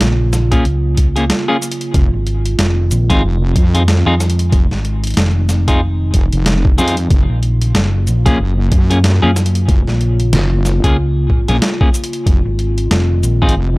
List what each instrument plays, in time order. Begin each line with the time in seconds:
Already playing: ambient pad C#3 F#3 A#3 F4
0.01 fingered electric bass A#1, snare, closed hi-hat
0.33 snare, closed hi-hat, shaker
0.52 clean electric guitar A#3 C#4 F4 G#4, kick, closed hi-hat
0.65 fingered electric bass C#2, closed hi-hat
0.97 kick, closed hi-hat
1.16 clean electric guitar A#3 C#4 F4 G#4, closed hi-hat
1.30 snare, closed hi-hat
1.48 clean electric guitar A#3 C#4 F4 G#4
1.62 closed hi-hat, shaker
1.71 closed hi-hat
1.81 closed hi-hat
1.94 wobble bass F1, ambient pad D#3 G#3 C4, kick, closed hi-hat
2.13 fingered electric bass G#1
2.27 closed hi-hat
2.46 closed hi-hat
2.59 fingered electric bass F1, snare, closed hi-hat
2.91 fingered electric bass A#1, closed hi-hat, shaker
3.10 wobble bass G#1, clean electric guitar C4 D#4 F4 G#4, kick, closed hi-hat
3.23 wobble bass F1
3.56 wobble bass F2, kick, closed hi-hat
3.74 clean electric guitar C4 D#4 F4 G#4, closed hi-hat
3.88 snare, closed hi-hat
4.06 fingered electric bass F2, clean electric guitar C4 D#4 F4 G#4
4.20 snare, closed hi-hat, shaker
4.30 closed hi-hat
4.39 closed hi-hat
4.52 wobble bass F1, ambient pad D#4, kick, closed hi-hat
4.71 fingered electric bass G#1, snare
4.85 closed hi-hat
5.04 closed hi-hat
5.07 closed hi-hat
5.10 closed hi-hat
5.14 snare, closed hi-hat
5.17 fingered electric bass F1, closed hi-hat
5.26 closed hi-hat
5.31 closed hi-hat
5.49 snare, closed hi-hat, shaker
5.68 clean electric guitar C4 D#4 F4 G#4, kick, closed hi-hat
6.14 wobble bass F1, kick, closed hi-hat
6.33 wobble bass F1, closed hi-hat
6.46 snare, closed hi-hat
6.65 kick
6.78 wobble bass F2, clean electric guitar C4 D#4 F4 G#4, closed hi-hat, shaker
6.88 closed hi-hat
6.97 closed hi-hat
7.10 wobble bass F#1, ambient pad C#3 F#3 A#3 F4, kick, closed hi-hat
7.29 fingered electric bass A#1
7.43 closed hi-hat
7.62 closed hi-hat
7.75 fingered electric bass F#1, snare, closed hi-hat
8.07 fingered electric bass A#1, closed hi-hat, shaker
8.26 wobble bass A#1, clean electric guitar A#3 C#4 F4 G#4, kick, closed hi-hat
8.39 wobble bass F#1
8.72 wobble bass F#2, kick, closed hi-hat
8.90 clean electric guitar A#3 C#4 F4 G#4, closed hi-hat
9.04 snare, closed hi-hat
9.22 fingered electric bass F#2, clean electric guitar A#3 C#4 F4 G#4
9.36 snare, closed hi-hat, shaker
9.46 closed hi-hat
9.55 closed hi-hat
9.68 wobble bass F#1, kick, closed hi-hat
9.87 fingered electric bass A#1, snare
10.01 closed hi-hat
10.20 closed hi-hat
10.33 wobble bass F#1, snare, closed hi-hat
10.65 snare, closed hi-hat, shaker
10.84 fingered electric bass C#2, clean electric guitar A#3 C#4 F4 G#4, kick, closed hi-hat
11.30 kick
11.48 wobble bass A#1, clean electric guitar A#3 C#4 F4 G#4, closed hi-hat
11.62 snare, closed hi-hat
11.81 clean electric guitar A#3 C#4 F4 G#4, kick
11.94 closed hi-hat, shaker
12.04 closed hi-hat
12.13 closed hi-hat
12.26 wobble bass F1, ambient pad D#3 G#3 C4, kick, closed hi-hat
12.45 fingered electric bass G#1
12.59 closed hi-hat
12.78 closed hi-hat
12.91 fingered electric bass F1, snare, closed hi-hat
13.23 fingered electric bass A#1, closed hi-hat, shaker
13.42 wobble bass G#1, clean electric guitar C4 D#4 F4 G#4, kick
13.49 closed hi-hat
13.56 wobble bass F1